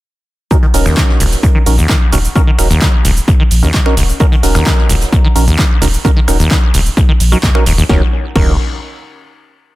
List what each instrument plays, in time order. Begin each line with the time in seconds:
0.51 acid bass D#2, synth stab C#4 D#4 F#4 A#4, kick, closed hi-hat, shaker
0.62 acid bass D#3, closed hi-hat
0.73 sub bass D#1, synth stab C#4 D#4 F#4 A#4, snare, closed hi-hat, open hi-hat, shaker
0.86 acid bass D#2, finger snap, snare, shaker
0.97 acid bass D#3, kick, snare, clap, closed hi-hat, shaker
1.10 snare
1.20 sub bass D#1, acid bass C#2, closed hi-hat, open hi-hat, shaker
1.32 snare, shaker
1.43 acid bass D#2, kick, closed hi-hat, shaker
1.55 acid bass D#3
1.66 sub bass A#1, synth stab C#4 D#4 F#4 A#4, closed hi-hat, open hi-hat, shaker
1.78 acid bass D#2, closed hi-hat, shaker
1.89 acid bass D#3, kick, snare, clap, closed hi-hat, shaker
2.12 sub bass D#1, acid bass C#2, synth stab C#4 D#4 F#4 A#4, closed hi-hat, open hi-hat, shaker
2.25 closed hi-hat, shaker
2.35 acid bass D#2, synth stab C#4 D#4 F#4 A#4, kick, closed hi-hat, shaker
2.47 acid bass D#3
2.58 sub bass D#1, synth stab C#4 D#4 F#4 A#4, finger snap, snare, closed hi-hat, open hi-hat, shaker
2.70 acid bass D#2, snare, shaker
2.81 acid bass D#3, kick, snare, clap, closed hi-hat, shaker
3.04 sub bass D#1, acid bass C#2, closed hi-hat, open hi-hat, shaker
3.17 shaker
3.28 acid bass D#2, kick, closed hi-hat, shaker
3.40 acid bass D#3
3.51 sub bass A#1, closed hi-hat, open hi-hat, shaker
3.63 acid bass D#2, synth stab C#4 D#4 F#4 A#4, shaker
3.74 acid bass D#3, kick, snare, clap, closed hi-hat, shaker
3.86 synth stab C#4 D#4 F#4 A#4, finger snap, snare
3.97 sub bass D#1, acid bass C#2, snare, closed hi-hat, open hi-hat, shaker
4.09 shaker
4.19 acid bass D#2, synth stab C#4 D#4 F#4 A#4, kick, closed hi-hat, shaker
4.32 acid bass D#3, closed hi-hat
4.43 sub bass D#1, synth stab C#4 D#4 F#4 A#4, snare, closed hi-hat, open hi-hat, shaker
4.55 acid bass D#2, finger snap, snare, shaker
4.66 acid bass D#3, kick, snare, clap, closed hi-hat, shaker
4.78 snare
4.89 sub bass D#1, acid bass C#2, closed hi-hat, open hi-hat, shaker
5.00 snare, shaker
5.12 acid bass D#2, kick, closed hi-hat, shaker
5.24 acid bass D#3
5.35 sub bass A#1, synth stab C#4 D#4 F#4 A#4, closed hi-hat, open hi-hat, shaker
5.47 acid bass D#2, closed hi-hat, shaker
5.59 acid bass D#3, kick, snare, clap, closed hi-hat, shaker
5.81 sub bass D#1, acid bass C#2, synth stab C#4 D#4 F#4 A#4, closed hi-hat, open hi-hat, shaker
5.94 closed hi-hat, shaker
6.05 acid bass D#2, synth stab C#4 D#4 F#4 A#4, kick, closed hi-hat, shaker
6.16 acid bass D#3
6.28 sub bass D#1, synth stab C#4 D#4 F#4 A#4, finger snap, snare, closed hi-hat, open hi-hat, shaker
6.39 acid bass D#2, snare, shaker
6.51 kick, snare, clap, closed hi-hat, shaker
6.74 sub bass D#1, acid bass C#2, closed hi-hat, open hi-hat, shaker
6.86 shaker
6.97 acid bass D#2, kick, closed hi-hat, shaker
7.09 acid bass D#3
7.20 sub bass A#1, closed hi-hat, open hi-hat, shaker
7.32 acid bass F#3, synth stab C#4 D#4 F#4 A#4, shaker
7.43 acid bass D#2, kick, snare, clap, closed hi-hat, shaker
7.55 synth stab C#4 D#4 F#4 A#4, finger snap, snare
7.66 sub bass D#1, acid bass D#2, snare, closed hi-hat, open hi-hat, shaker
7.78 acid bass D#2, shaker
7.89 sub bass D#1, acid bass D#2, synth stab C#4 D#4 F#4 A#4, kick, snare
8.36 sub bass D#1, acid bass D#2, synth stab C#4 D#4 F#4 A#4, kick, crash